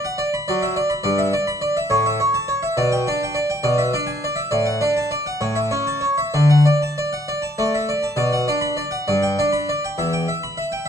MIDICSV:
0, 0, Header, 1, 2, 480
1, 0, Start_track
1, 0, Key_signature, 2, "major"
1, 0, Tempo, 576923
1, 862, Time_signature, 6, 3, 24, 8
1, 3753, Tempo, 611621
1, 7113, Tempo, 584226
1, 8833, End_track
2, 0, Start_track
2, 0, Title_t, "Harpsichord"
2, 0, Program_c, 0, 6
2, 39, Note_on_c, 0, 78, 55
2, 152, Note_on_c, 0, 74, 63
2, 160, Note_off_c, 0, 78, 0
2, 276, Note_off_c, 0, 74, 0
2, 282, Note_on_c, 0, 83, 57
2, 399, Note_on_c, 0, 74, 48
2, 401, Note_off_c, 0, 83, 0
2, 409, Note_on_c, 0, 54, 51
2, 519, Note_off_c, 0, 74, 0
2, 519, Note_on_c, 0, 76, 50
2, 631, Note_off_c, 0, 76, 0
2, 635, Note_on_c, 0, 74, 52
2, 647, Note_off_c, 0, 54, 0
2, 747, Note_on_c, 0, 83, 54
2, 755, Note_off_c, 0, 74, 0
2, 861, Note_on_c, 0, 74, 64
2, 863, Note_off_c, 0, 83, 0
2, 867, Note_on_c, 0, 43, 66
2, 984, Note_on_c, 0, 76, 55
2, 985, Note_off_c, 0, 74, 0
2, 1094, Note_off_c, 0, 43, 0
2, 1106, Note_off_c, 0, 76, 0
2, 1109, Note_on_c, 0, 74, 53
2, 1226, Note_on_c, 0, 83, 59
2, 1229, Note_off_c, 0, 74, 0
2, 1343, Note_on_c, 0, 74, 51
2, 1347, Note_off_c, 0, 83, 0
2, 1466, Note_off_c, 0, 74, 0
2, 1471, Note_on_c, 0, 76, 52
2, 1580, Note_on_c, 0, 73, 58
2, 1584, Note_off_c, 0, 76, 0
2, 1584, Note_on_c, 0, 45, 68
2, 1706, Note_off_c, 0, 73, 0
2, 1715, Note_on_c, 0, 76, 57
2, 1815, Note_off_c, 0, 45, 0
2, 1831, Note_on_c, 0, 73, 47
2, 1833, Note_off_c, 0, 76, 0
2, 1949, Note_on_c, 0, 81, 76
2, 1952, Note_off_c, 0, 73, 0
2, 2066, Note_on_c, 0, 73, 52
2, 2071, Note_off_c, 0, 81, 0
2, 2185, Note_on_c, 0, 76, 54
2, 2190, Note_off_c, 0, 73, 0
2, 2304, Note_off_c, 0, 76, 0
2, 2305, Note_on_c, 0, 47, 69
2, 2308, Note_on_c, 0, 74, 55
2, 2429, Note_on_c, 0, 79, 68
2, 2432, Note_off_c, 0, 74, 0
2, 2539, Note_off_c, 0, 47, 0
2, 2553, Note_off_c, 0, 79, 0
2, 2557, Note_on_c, 0, 62, 46
2, 2562, Note_on_c, 0, 74, 47
2, 2680, Note_off_c, 0, 74, 0
2, 2690, Note_on_c, 0, 79, 46
2, 2785, Note_on_c, 0, 74, 53
2, 2804, Note_off_c, 0, 62, 0
2, 2804, Note_off_c, 0, 79, 0
2, 2911, Note_on_c, 0, 79, 48
2, 2912, Note_off_c, 0, 74, 0
2, 3023, Note_on_c, 0, 74, 57
2, 3026, Note_on_c, 0, 47, 66
2, 3030, Note_off_c, 0, 79, 0
2, 3146, Note_on_c, 0, 76, 52
2, 3153, Note_off_c, 0, 74, 0
2, 3263, Note_off_c, 0, 47, 0
2, 3274, Note_on_c, 0, 74, 49
2, 3275, Note_off_c, 0, 76, 0
2, 3277, Note_on_c, 0, 62, 42
2, 3383, Note_on_c, 0, 80, 67
2, 3399, Note_off_c, 0, 74, 0
2, 3514, Note_off_c, 0, 80, 0
2, 3527, Note_off_c, 0, 62, 0
2, 3529, Note_on_c, 0, 74, 48
2, 3626, Note_on_c, 0, 76, 47
2, 3646, Note_off_c, 0, 74, 0
2, 3749, Note_off_c, 0, 76, 0
2, 3753, Note_on_c, 0, 74, 56
2, 3758, Note_on_c, 0, 45, 53
2, 3867, Note_on_c, 0, 78, 52
2, 3873, Note_off_c, 0, 74, 0
2, 3979, Note_off_c, 0, 45, 0
2, 3986, Note_on_c, 0, 62, 45
2, 3989, Note_off_c, 0, 78, 0
2, 3992, Note_on_c, 0, 74, 47
2, 4111, Note_off_c, 0, 74, 0
2, 4111, Note_on_c, 0, 81, 57
2, 4224, Note_on_c, 0, 74, 41
2, 4230, Note_off_c, 0, 81, 0
2, 4232, Note_off_c, 0, 62, 0
2, 4343, Note_on_c, 0, 78, 40
2, 4346, Note_off_c, 0, 74, 0
2, 4457, Note_on_c, 0, 45, 52
2, 4458, Note_on_c, 0, 73, 47
2, 4459, Note_off_c, 0, 78, 0
2, 4573, Note_on_c, 0, 76, 45
2, 4583, Note_off_c, 0, 73, 0
2, 4690, Note_off_c, 0, 45, 0
2, 4695, Note_on_c, 0, 73, 37
2, 4698, Note_on_c, 0, 61, 37
2, 4701, Note_off_c, 0, 76, 0
2, 4820, Note_on_c, 0, 81, 53
2, 4822, Note_off_c, 0, 73, 0
2, 4929, Note_on_c, 0, 73, 38
2, 4946, Note_off_c, 0, 81, 0
2, 4951, Note_off_c, 0, 61, 0
2, 5061, Note_off_c, 0, 73, 0
2, 5061, Note_on_c, 0, 76, 41
2, 5182, Note_off_c, 0, 76, 0
2, 5187, Note_on_c, 0, 74, 44
2, 5188, Note_on_c, 0, 50, 51
2, 5311, Note_on_c, 0, 78, 43
2, 5312, Note_off_c, 0, 74, 0
2, 5421, Note_off_c, 0, 50, 0
2, 5434, Note_off_c, 0, 78, 0
2, 5436, Note_on_c, 0, 74, 36
2, 5557, Note_off_c, 0, 74, 0
2, 5567, Note_on_c, 0, 81, 48
2, 5683, Note_off_c, 0, 81, 0
2, 5690, Note_on_c, 0, 74, 37
2, 5805, Note_off_c, 0, 74, 0
2, 5807, Note_on_c, 0, 78, 38
2, 5924, Note_off_c, 0, 78, 0
2, 5929, Note_on_c, 0, 74, 45
2, 6038, Note_on_c, 0, 81, 41
2, 6046, Note_off_c, 0, 74, 0
2, 6162, Note_off_c, 0, 81, 0
2, 6164, Note_on_c, 0, 57, 33
2, 6166, Note_on_c, 0, 74, 37
2, 6288, Note_off_c, 0, 74, 0
2, 6291, Note_on_c, 0, 76, 34
2, 6403, Note_on_c, 0, 74, 37
2, 6406, Note_off_c, 0, 76, 0
2, 6416, Note_off_c, 0, 57, 0
2, 6513, Note_on_c, 0, 81, 41
2, 6529, Note_off_c, 0, 74, 0
2, 6620, Note_on_c, 0, 47, 57
2, 6623, Note_on_c, 0, 74, 49
2, 6636, Note_off_c, 0, 81, 0
2, 6747, Note_on_c, 0, 78, 52
2, 6755, Note_off_c, 0, 74, 0
2, 6859, Note_off_c, 0, 47, 0
2, 6868, Note_on_c, 0, 74, 46
2, 6873, Note_on_c, 0, 62, 45
2, 6877, Note_off_c, 0, 78, 0
2, 6972, Note_on_c, 0, 83, 62
2, 6997, Note_off_c, 0, 74, 0
2, 7095, Note_on_c, 0, 74, 41
2, 7108, Note_off_c, 0, 83, 0
2, 7124, Note_off_c, 0, 62, 0
2, 7210, Note_on_c, 0, 78, 49
2, 7234, Note_off_c, 0, 74, 0
2, 7346, Note_off_c, 0, 78, 0
2, 7347, Note_on_c, 0, 74, 47
2, 7352, Note_on_c, 0, 43, 57
2, 7468, Note_on_c, 0, 79, 47
2, 7481, Note_off_c, 0, 74, 0
2, 7591, Note_off_c, 0, 43, 0
2, 7601, Note_off_c, 0, 79, 0
2, 7603, Note_on_c, 0, 62, 45
2, 7603, Note_on_c, 0, 74, 45
2, 7716, Note_on_c, 0, 83, 66
2, 7728, Note_off_c, 0, 74, 0
2, 7845, Note_off_c, 0, 83, 0
2, 7851, Note_on_c, 0, 74, 43
2, 7854, Note_off_c, 0, 62, 0
2, 7972, Note_off_c, 0, 74, 0
2, 7978, Note_on_c, 0, 79, 45
2, 8089, Note_off_c, 0, 79, 0
2, 8089, Note_on_c, 0, 40, 59
2, 8093, Note_on_c, 0, 76, 51
2, 8212, Note_off_c, 0, 76, 0
2, 8212, Note_on_c, 0, 79, 52
2, 8315, Note_off_c, 0, 40, 0
2, 8330, Note_off_c, 0, 79, 0
2, 8338, Note_on_c, 0, 76, 46
2, 8452, Note_off_c, 0, 76, 0
2, 8462, Note_on_c, 0, 83, 57
2, 8574, Note_off_c, 0, 83, 0
2, 8578, Note_on_c, 0, 76, 48
2, 8691, Note_off_c, 0, 76, 0
2, 8698, Note_on_c, 0, 79, 51
2, 8809, Note_on_c, 0, 76, 57
2, 8811, Note_off_c, 0, 79, 0
2, 8833, Note_off_c, 0, 76, 0
2, 8833, End_track
0, 0, End_of_file